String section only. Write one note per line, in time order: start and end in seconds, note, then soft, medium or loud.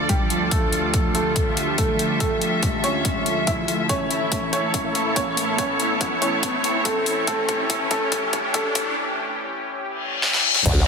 0.00 3.89 F4 medium
0.00 3.90 A4 medium
0.00 1.49 D5 medium
1.36 5.19 E5 medium
3.90 8.97 E4 medium
4.03 8.97 A4 medium
4.40 8.97 C#5 medium
10.66 10.87 F4 medium